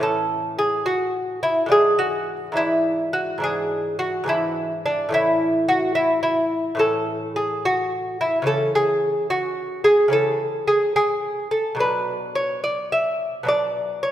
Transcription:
Already playing: A2
0.00 E3 C#4 A4
0.58 G#4
0.86 F#4
1.43 E4
1.66 G#2 E3 D4
1.72 G#4
1.99 F#4
2.52 G#2 E3 D4
2.57 E4
3.13 F#4
3.38 G#2 E3 D4
3.44 G#4
3.99 F#4
4.24 G#2 E3 D4
4.29 E4
4.86 D4
5.09 A2 E3 C#4
5.14 E4
5.69 F#4
5.95 E4
6.23 E4
6.75 A2 E3 C#4
6.79 A4
7.36 G#4
7.65 F#4
8.21 E4
8.42 C#3 E3 C#4
8.47 A4
8.75 G#4
9.30 F#4
9.84 G#4
10.08 C#3 E3 C#4
10.13 A4
10.67 G#4
10.96 G#4
11.51 A4
11.75 B2 F#3
11.79 D4 B4
12.35 C#5
12.64 D5
12.92 E5
13.43 B2 F#3 D4
13.48 D5
14.03 C#5

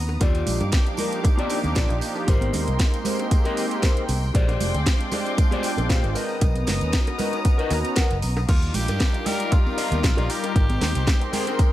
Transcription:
Already playing: D#2 B3 A#5 D#6
0.09 muted clean electric guitar stroke, tambourine, high bongo
0.20 D#2 F3 A#3 D4 D#4 F4 G4 D5 F5 D6, kick, closed hi-hat, tambourine, high bongo
0.35 closed hi-hat, tambourine
0.46 A#1, open hi-hat, tambourine, low conga
0.61 G2, closed hi-hat, tambourine, high bongo
0.72 kick, snare, closed hi-hat, tambourine
0.86 closed hi-hat, tambourine, high bongo
0.97 F3 A#3 D4 D#4 F4 G4 A#4, open hi-hat, tambourine, low conga
1.11 closed hi-hat, tambourine
1.24 kick, closed hi-hat, tambourine, high bongo
1.37 F4 G4 D5, closed hi-hat, tambourine, high conga
1.49 open hi-hat, tambourine, high bongo
1.63 D#2 F3 A#3 D4 D#4 G4, closed hi-hat, tambourine, high conga
1.75 A#1 F4 G4 D5, kick, snare, closed hi-hat, tambourine
1.89 A#1, closed hi-hat, tambourine, high bongo
2.01 open hi-hat, tambourine
2.15 muted clean electric guitar stroke, tambourine, high bongo
2.27 G#1 G#3 A#3 C4 D#4 G4 A#4 C5 G5 C6, kick, closed hi-hat, tambourine
2.41 closed hi-hat, tambourine, high conga
2.53 D#2, open hi-hat, tambourine, high bongo, low conga
2.67 C2, closed hi-hat, tambourine
2.79 kick, snare, closed hi-hat, tambourine, high bongo
2.94 closed hi-hat, tambourine
3.04 G#3 A#3 C4 D#4 G4 A#4 C5, open hi-hat, tambourine, low conga
3.19 closed hi-hat, tambourine, high bongo
3.31 kick, closed hi-hat, tambourine
3.44 G4 A#4 D#5, closed hi-hat, tambourine, high bongo
3.57 open hi-hat, tambourine
3.71 closed hi-hat, tambourine
3.82 G4 A#4 C5, kick, snare, closed hi-hat, tambourine, high bongo
3.97 closed hi-hat, tambourine
4.09 C2, open hi-hat, tambourine, high bongo, high conga
4.22 muted clean electric guitar stroke, tambourine
4.34 A#1 G#3 C4 D4 F4 G4 G#4 C5 D5 G5 C6 D6, kick, closed hi-hat, tambourine
4.48 closed hi-hat, tambourine, high bongo
4.60 F1, open hi-hat, tambourine, low conga
4.75 D2, closed hi-hat, tambourine, high bongo
4.86 kick, snare, closed hi-hat, tambourine
5.00 closed hi-hat, tambourine
5.11 G#3 C4 D4 F4 G4 G#4 C5 D5 G5, open hi-hat, tambourine, high bongo, low conga
5.26 closed hi-hat, tambourine
5.37 kick, closed hi-hat, tambourine, high bongo
5.51 G4 G#4 C5 D5, closed hi-hat, tambourine, high conga
5.63 open hi-hat, tambourine
5.77 A#1, closed hi-hat, tambourine, high bongo, high conga
5.89 A#2 G4 G#4 C5 F5, kick, snare, closed hi-hat, tambourine
6.03 G#1, closed hi-hat, tambourine, high bongo
6.15 B3 A#4 B4 D#5 A#5 D#6, open hi-hat, tambourine
6.29 tambourine
6.41 B1 B3 C#4 D#4 F#4, kick, closed hi-hat, tambourine, high bongo
6.55 closed hi-hat, tambourine, high conga
6.67 F#1, snare, open hi-hat, tambourine, high bongo, low conga
6.81 D#2, closed hi-hat, tambourine
6.93 kick, snare, closed hi-hat, tambourine
7.07 closed hi-hat, tambourine, high bongo
7.18 B3 C#4 D#4 F#4 A#4 B4 D#5 A#5, open hi-hat, tambourine, low conga
7.33 closed hi-hat, tambourine, high bongo
7.45 kick, closed hi-hat, tambourine
7.58 A#4 B4 D#5, closed hi-hat, tambourine
7.70 D#2, open hi-hat, tambourine, high bongo
7.85 closed hi-hat, tambourine
7.96 A#4 B4 F#5, kick, snare, closed hi-hat, tambourine, high bongo
8.11 F#1, closed hi-hat, tambourine
8.22 B1, open hi-hat, tambourine, high conga
8.36 muted clean electric guitar stroke, tambourine, high bongo
8.48 D#2 G3 D4 D#4 F4 G4 A#4 F5 D6, kick, closed hi-hat, crash, tambourine, high bongo
8.62 closed hi-hat, tambourine
8.74 A#1 G4, open hi-hat, tambourine, low conga
8.88 G2, closed hi-hat, tambourine, high bongo
8.99 muted clean electric guitar stroke, kick, snare, closed hi-hat, tambourine
9.14 muted clean electric guitar stroke, closed hi-hat, tambourine, high bongo
9.25 G3 D#4 F4 G4 A#4 D5 D#5 G5, open hi-hat, tambourine, low conga
9.40 closed hi-hat, tambourine
9.52 F4, kick, closed hi-hat, tambourine, high bongo
9.66 tambourine, high conga
9.77 G4 D5 D#5 F5, open hi-hat, tambourine, high bongo
9.91 D#2 G3 D#4 F4 A#4, closed hi-hat, tambourine, high conga
10.04 A#1, kick, snare, closed hi-hat, tambourine
10.17 A#1 G4 D5 D#5 F5, closed hi-hat, tambourine, high bongo
10.29 G4, open hi-hat, tambourine
10.43 muted clean electric guitar stroke, closed hi-hat, tambourine, high bongo
10.55 G#1 G#3 C4 D#4 G4 A#4 C5 G5 C6, kick, closed hi-hat, tambourine
10.69 closed hi-hat, tambourine, high conga
10.81 D#2, snare, open hi-hat, tambourine, high bongo, low conga
10.95 C2, closed hi-hat, tambourine
11.07 muted clean electric guitar stroke, kick, snare, closed hi-hat, tambourine, high bongo
11.20 muted clean electric guitar stroke, closed hi-hat, tambourine
11.32 G#3 C4 D#4 G#4 A#4 C5 G5, open hi-hat, tambourine, low conga
11.47 closed hi-hat, tambourine, high bongo
11.59 kick, closed hi-hat, tambourine

